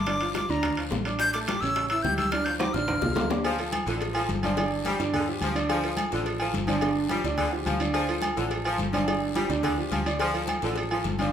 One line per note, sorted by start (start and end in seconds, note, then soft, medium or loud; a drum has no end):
0.00 0.44 G1 medium
0.00 0.35 D6 loud
0.06 0.19 D3 medium
0.06 0.19 D4 medium
0.06 0.19 D5 medium
0.06 high bongo medium
0.06 high conga soft
0.06 high timbale medium
0.06 long guiro medium
0.21 0.45 F3 medium
0.21 0.45 F4 medium
0.21 0.45 F5 medium
0.21 high bongo soft
0.21 high conga soft
0.21 high timbale medium
0.35 0.52 D6 medium
0.35 high bongo medium
0.35 high conga medium
0.35 high timbale medium
0.35 short guiro medium
0.49 0.89 D2 medium
0.49 0.73 D3 medium
0.49 0.73 D4 medium
0.49 0.73 D5 medium
0.49 0.78 A#5 medium
0.49 high bongo soft
0.49 short guiro medium
0.63 high bongo medium
0.63 high conga soft
0.63 low conga medium
0.63 high timbale medium
0.63 long guiro medium
0.77 1.01 F3 medium
0.77 1.01 F4 medium
0.77 1.02 F5 medium
0.77 high conga soft
0.77 high timbale medium
0.91 1.57 A1 medium
0.91 high bongo soft
0.91 low bongo medium
0.91 high conga medium
0.91 low timbale medium
0.91 short guiro medium
1.05 1.29 D4 medium
1.05 1.29 D5 medium
1.05 1.29 D6 medium
1.05 high bongo soft
1.05 high conga soft
1.05 high timbale medium
1.05 short guiro medium
1.19 1.33 G6 loud
1.19 high bongo medium
1.19 high timbale medium
1.19 long guiro medium
1.33 1.46 A3 medium
1.33 1.46 A4 medium
1.33 1.46 A5 medium
1.33 1.39 D6 medium
1.33 high bongo soft
1.33 high conga soft
1.33 high timbale medium
1.46 1.60 G3 medium
1.46 1.60 G4 medium
1.46 1.60 G5 medium
1.46 1.62 D6 medium
1.46 high bongo medium
1.46 high conga medium
1.46 high timbale medium
1.46 short guiro medium
1.61 2.01 A1 medium
1.61 1.86 C#3 medium
1.61 1.86 C#4 medium
1.61 1.86 C#5 medium
1.61 1.89 E6 loud
1.61 high bongo soft
1.61 short guiro medium
1.76 high bongo medium
1.76 high conga soft
1.76 high timbale medium
1.76 long guiro medium
1.89 2.02 E3 medium
1.89 2.02 E4 medium
1.89 2.02 E5 medium
1.89 2.04 E6 medium
1.89 high conga soft
1.89 high timbale medium
2.02 2.69 D2 medium
2.02 2.27 G3 medium
2.02 2.28 G4 medium
2.02 2.28 G5 medium
2.02 2.17 G6 loud
2.02 high bongo soft
2.02 low bongo medium
2.02 high conga medium
2.02 short guiro medium
2.17 2.32 E6 medium
2.17 high bongo soft
2.17 high conga medium
2.17 high timbale medium
2.17 short guiro medium
2.31 2.44 D3 medium
2.31 2.44 D4 medium
2.31 2.45 D5 medium
2.31 2.46 F6 loud
2.31 high bongo medium
2.31 high conga soft
2.31 high timbale medium
2.31 long guiro medium
2.45 2.70 F3 medium
2.45 2.70 F4 medium
2.45 2.70 F5 medium
2.45 2.58 G6 medium
2.45 high bongo soft
2.45 high conga soft
2.45 high timbale medium
2.59 2.75 D6 medium
2.59 high bongo medium
2.59 high conga loud
2.59 high timbale loud
2.59 short guiro medium
2.73 3.00 A1 medium
2.73 2.98 D3 medium
2.73 2.98 D4 medium
2.73 2.99 D5 medium
2.73 3.30 F6 loud
2.73 high bongo medium
2.73 short guiro medium
2.88 high conga soft
2.88 low conga medium
2.88 high timbale loud
2.88 long guiro medium
3.02 3.15 C2 medium
3.02 3.27 F3 medium
3.02 3.26 F4 medium
3.02 3.27 F5 medium
3.02 high bongo medium
3.02 high conga soft
3.02 low conga medium
3.02 low timbale medium
3.16 3.82 D2 medium
3.16 low bongo medium
3.16 high conga medium
3.16 low timbale loud
3.16 short guiro medium
3.30 3.42 D4 medium
3.30 3.42 D5 medium
3.30 3.43 D6 medium
3.30 low bongo loud
3.30 high conga soft
3.30 low timbale loud
3.30 short guiro medium
3.44 3.67 F3 loud
3.44 cowbell loud
3.44 high conga soft
3.44 low agogo loud
3.44 long guiro medium
3.58 3.82 F3 medium
3.58 3.82 F4 medium
3.58 3.82 A4 medium
3.58 high conga soft
3.58 low agogo medium
3.72 cowbell medium
3.72 high conga medium
3.72 low agogo loud
3.72 short guiro medium
3.86 4.26 A1 medium
3.86 4.01 D3 medium
3.86 4.10 F3 medium
3.86 4.11 F4 medium
3.86 4.11 A4 medium
3.86 cowbell medium
3.86 short guiro medium
4.01 cowbell loud
4.01 high conga soft
4.01 low agogo medium
4.01 long guiro medium
4.14 4.29 F3 medium
4.14 4.38 F3 medium
4.14 4.38 F4 medium
4.14 4.39 A4 medium
4.14 high conga soft
4.14 low agogo loud
4.29 4.94 G1 medium
4.29 cowbell medium
4.29 high conga loud
4.29 short guiro medium
4.43 4.55 D3 medium
4.43 4.65 F3 medium
4.43 4.55 D4 medium
4.43 4.56 D5 loud
4.43 high conga medium
4.43 low agogo loud
4.43 short guiro medium
4.57 4.81 D3 medium
4.57 4.81 D4 medium
4.57 4.81 D5 medium
4.57 cowbell loud
4.57 low agogo loud
4.57 long guiro medium
4.71 high conga soft
4.85 4.97 F3 medium
4.85 5.00 G3 medium
4.85 4.98 F4 medium
4.85 4.98 G4 medium
4.85 cowbell medium
4.85 high conga medium
4.85 low agogo medium
4.85 short guiro medium
5.00 5.39 G2 medium
5.00 5.23 D3 medium
5.00 5.23 D4 medium
5.00 5.23 D5 medium
5.00 cowbell medium
5.00 short guiro medium
5.14 5.28 D3 medium
5.14 cowbell medium
5.14 high conga soft
5.14 low conga medium
5.14 low agogo loud
5.14 long guiro medium
5.28 5.51 F3 medium
5.28 5.51 F4 medium
5.28 5.51 G4 medium
5.28 high conga soft
5.41 6.06 D2 medium
5.41 5.57 F3 medium
5.41 cowbell medium
5.41 high conga medium
5.41 low agogo medium
5.41 short guiro medium
5.55 5.79 D3 medium
5.55 5.78 D4 medium
5.55 5.79 D5 loud
5.55 high conga soft
5.55 low agogo medium
5.55 short guiro medium
5.69 5.92 F3 loud
5.69 cowbell loud
5.69 high conga soft
5.69 low agogo loud
5.69 long guiro medium
5.83 6.07 F3 medium
5.83 6.07 F4 medium
5.83 6.07 A4 medium
5.83 high conga soft
5.83 low agogo medium
5.97 cowbell medium
5.97 high conga medium
5.97 low agogo loud
5.97 short guiro medium
6.12 6.52 A1 medium
6.12 6.27 D3 medium
6.12 6.35 F3 medium
6.12 6.35 F4 medium
6.12 6.35 A4 medium
6.12 cowbell medium
6.12 short guiro medium
6.26 cowbell medium
6.26 high conga soft
6.26 low agogo medium
6.26 long guiro medium
6.40 6.55 F3 medium
6.40 6.64 F3 medium
6.40 6.64 F4 medium
6.40 6.64 A4 medium
6.40 high conga soft
6.40 low agogo loud
6.54 7.19 G1 medium
6.54 cowbell medium
6.54 high conga medium
6.54 short guiro medium
6.67 6.80 D3 loud
6.67 6.90 F3 medium
6.67 6.80 D4 medium
6.67 6.80 D5 loud
6.67 high conga medium
6.67 low agogo loud
6.67 short guiro medium
6.81 7.05 D3 medium
6.81 7.06 D4 medium
6.81 7.06 D5 medium
6.81 cowbell loud
6.81 high conga soft
6.81 low agogo loud
6.81 long guiro medium
6.96 high conga soft
7.09 7.22 F3 medium
7.09 7.25 G3 medium
7.09 7.22 F4 medium
7.09 7.22 G4 medium
7.09 cowbell medium
7.09 high conga medium
7.09 low agogo medium
7.09 short guiro medium
7.24 7.63 D2 medium
7.24 7.47 D3 medium
7.24 7.48 D4 medium
7.24 7.48 D5 medium
7.24 cowbell medium
7.24 short guiro medium
7.37 7.52 D3 medium
7.37 cowbell loud
7.37 high conga soft
7.37 low conga medium
7.37 low agogo loud
7.37 long guiro medium
7.52 7.75 F3 medium
7.52 7.75 F4 medium
7.52 7.76 G4 medium
7.52 high conga soft
7.65 8.32 D2 loud
7.65 7.80 F3 medium
7.65 cowbell medium
7.65 high conga loud
7.65 low agogo medium
7.65 short guiro medium
7.80 8.04 D3 medium
7.80 8.04 D4 medium
7.80 8.04 D5 medium
7.80 high conga soft
7.80 low agogo medium
7.80 short guiro medium
7.94 8.16 F3 medium
7.94 cowbell loud
7.94 high conga soft
7.94 low agogo loud
7.94 long guiro medium
8.08 8.32 F3 medium
8.08 8.32 F4 medium
8.08 8.32 A4 medium
8.08 high conga soft
8.08 low agogo medium
8.22 cowbell medium
8.22 high conga medium
8.22 low agogo loud
8.22 short guiro medium
8.36 8.77 A1 medium
8.36 8.51 D3 medium
8.36 8.60 F3 medium
8.36 8.60 F4 medium
8.36 8.60 A4 medium
8.36 cowbell medium
8.36 short guiro medium
8.51 cowbell loud
8.51 high conga soft
8.51 low agogo medium
8.51 long guiro medium
8.64 8.79 F3 medium
8.64 8.88 F3 medium
8.64 8.89 F4 medium
8.64 8.89 A4 medium
8.64 high conga soft
8.64 low agogo loud
8.78 9.44 G1 medium
8.78 cowbell medium
8.78 high conga loud
8.78 short guiro medium
8.93 9.05 D3 medium
8.93 9.15 F3 medium
8.93 9.05 D4 medium
8.93 9.05 D5 medium
8.93 high conga medium
8.93 low agogo loud
8.93 short guiro medium
9.07 9.31 D3 medium
9.07 9.31 D4 medium
9.07 9.31 D5 medium
9.07 cowbell loud
9.07 high conga soft
9.07 low agogo loud
9.07 long guiro medium
9.22 high conga soft
9.35 9.47 F3 medium
9.35 9.50 G3 medium
9.35 9.47 F4 medium
9.35 9.47 G4 medium
9.35 cowbell medium
9.35 high conga medium
9.35 low agogo medium
9.35 short guiro medium
9.49 9.89 D2 loud
9.49 9.73 D3 medium
9.49 9.73 D4 medium
9.49 9.73 D5 medium
9.49 cowbell medium
9.49 short guiro medium
9.62 9.77 D3 medium
9.62 cowbell medium
9.62 high conga soft
9.62 low conga medium
9.62 low agogo loud
9.62 long guiro medium
9.77 10.01 F3 medium
9.77 10.01 F4 medium
9.77 10.01 G4 medium
9.77 high conga soft
9.90 10.57 D2 medium
9.90 10.06 F3 medium
9.90 cowbell medium
9.90 high conga medium
9.90 low agogo medium
9.90 short guiro medium
10.06 10.29 D3 medium
10.06 10.29 D4 medium
10.06 10.29 D5 loud
10.06 high conga soft
10.06 low agogo medium
10.06 short guiro medium
10.19 10.42 F3 loud
10.19 cowbell loud
10.19 high conga soft
10.19 low agogo loud
10.19 long guiro medium
10.34 10.57 F3 medium
10.34 10.57 F4 medium
10.34 10.57 A4 medium
10.34 high conga soft
10.34 low agogo medium
10.47 cowbell medium
10.47 high conga medium
10.47 low agogo loud
10.47 short guiro medium
10.62 11.02 A1 medium
10.62 10.78 D3 medium
10.62 10.86 F3 medium
10.62 10.86 F4 medium
10.62 10.86 A4 medium
10.62 cowbell medium
10.62 short guiro medium
10.76 cowbell loud
10.76 high conga soft
10.76 low agogo medium
10.76 long guiro medium
10.90 11.05 F3 medium
10.90 11.14 F3 medium
10.90 11.14 F4 medium
10.90 11.14 A4 medium
10.90 high conga soft
10.90 low agogo loud
11.04 11.32 G1 medium
11.04 cowbell medium
11.04 high conga medium
11.04 short guiro medium
11.19 11.31 D3 loud
11.19 11.32 F3 medium
11.19 11.31 D4 medium
11.19 11.31 D5 loud
11.19 high conga loud
11.19 low agogo medium
11.19 short guiro medium